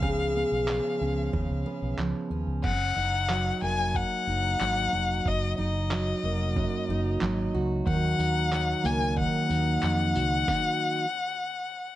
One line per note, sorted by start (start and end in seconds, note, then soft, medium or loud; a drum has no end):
0.00 0.43 C#2 medium
0.00 1.32 C#3 medium
0.00 0.67 F3 medium
0.00 0.34 B3 medium
0.00 1.01 C#4 medium
0.00 2.64 G#4 medium
0.00 1.95 F5 medium
0.00 kick loud
0.35 1.65 B3 medium
0.52 0.78 B1 medium
0.68 1.98 F3 medium
0.68 clap loud
1.01 1.28 C#2 medium
1.01 2.30 C#4 medium
1.33 1.47 D#2 medium
1.33 2.71 C#3 medium
1.33 kick loud
1.50 1.63 C#2 medium
1.66 2.71 B3 medium
1.82 1.96 B1 medium
1.98 2.12 C#2 medium
1.98 2.71 F3 medium
1.98 clap loud
2.30 2.44 D#2 medium
2.30 2.96 C#4 medium
2.47 2.61 C#2 medium
2.64 2.91 F#1 medium
2.64 3.58 F#5 loud
2.64 kick loud
2.64 crash medium
2.96 3.50 F#1 medium
2.96 4.27 D#4 medium
3.29 4.60 F#3 medium
3.29 clap loud
3.62 4.02 F1 medium
3.62 6.23 A#3 medium
3.62 3.98 G#5 medium
3.95 5.29 F#5 loud
3.95 kick loud
4.27 4.54 F#1 medium
4.27 5.58 D#4 medium
4.60 4.87 G#1 medium
4.60 5.91 F#3 medium
4.60 clap loud
4.93 5.20 F1 medium
4.93 7.54 F#4 medium
5.26 5.52 F#1 medium
5.26 5.59 D#5 medium
5.26 kick loud
5.58 6.12 F#1 loud
5.58 6.90 D#4 medium
5.58 7.51 D#5 medium
5.91 7.21 F#3 medium
5.91 clap loud
6.23 6.64 F1 medium
6.23 8.83 A#3 medium
6.56 7.94 F#2 medium
6.56 kick loud
6.89 7.16 F#1 loud
6.89 8.19 D#4 medium
7.21 7.48 G#1 medium
7.21 8.51 F#3 medium
7.21 clap loud
7.54 7.81 C#2 medium
7.54 10.15 F#4 medium
7.87 8.14 D#2 loud
7.87 9.16 D#3 medium
7.87 8.87 F#5 loud
7.87 kick loud
8.19 8.73 D#2 medium
8.19 9.49 D#4 medium
8.19 tambourine medium
8.51 11.05 F#3 medium
8.51 clap medium
8.84 9.25 C#2 medium
8.84 11.05 A#3 medium
8.84 9.18 G#5 medium
8.84 tambourine medium
9.16 11.05 D#3 medium
9.16 11.95 F#5 medium
9.16 kick loud
9.49 9.77 D#2 medium
9.49 11.05 D#4 medium
9.49 tambourine medium
9.83 10.17 F2 medium
9.83 clap loud
10.15 10.42 C#2 medium
10.15 11.05 F#4 medium
10.15 tambourine medium
10.48 kick loud
10.48 snare medium